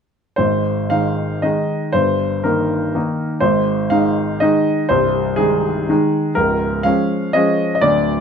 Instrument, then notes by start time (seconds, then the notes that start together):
grand piano
0.36 G#1 G#2 C5
0.90 D#3 G#3 D#4 F5
1.42 D#3 G#3 D#4 D#5
1.92 G1 G2 C5
2.44 D#3 A#3 D#4 A#4
2.95 D#3 A#3 D#4
3.40 G#1 G#2 C5
3.90 D#3 G#3 D#4 F5
4.40 D#3 G#3 D#4 D#5
4.89 C1 C2 C5
5.36 D#3 G#3 D#4 G#4
5.89 D#3 G#3 D#4
6.35 C#1 C#2 A#4
6.83 F3 G#3 C#4 F5
7.33 F3 G#3 C#4 D#5
7.75 D#5
7.81 D1 D2 D5